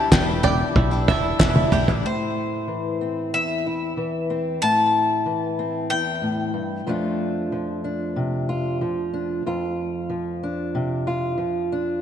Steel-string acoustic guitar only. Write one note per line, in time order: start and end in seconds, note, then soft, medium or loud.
2.03 3.33 A2 medium
2.03 3.65 E4 soft
2.68 3.96 E3 soft
3.01 4.30 C4 soft
3.34 4.62 E2 medium
3.67 4.62 E4 soft
3.97 4.58 E3 soft
4.30 5.58 C4 soft
4.63 5.91 A2 medium
4.63 6.89 E4 soft
5.26 6.84 E3 soft
5.59 6.88 C4 soft
5.91 6.53 E2 soft
6.22 6.55 A2 soft
6.54 6.86 G2 soft
6.87 9.41 F2 medium
6.87 7.52 F3 soft
6.87 10.38 A3 medium
6.87 7.84 D4 medium
6.87 8.48 F4 medium
7.52 8.80 F3 soft
7.84 9.12 D4 soft
8.16 8.81 C3 soft
8.49 9.42 F4 medium
8.81 9.42 F3 soft
9.14 9.42 D4 soft
9.46 12.00 F2 medium
9.46 11.06 F4 medium
10.10 11.37 F3 soft
10.43 11.71 D4 soft
10.75 11.39 C3 medium
11.07 11.99 F4 medium
11.38 11.99 F3 soft
11.72 12.00 D4 soft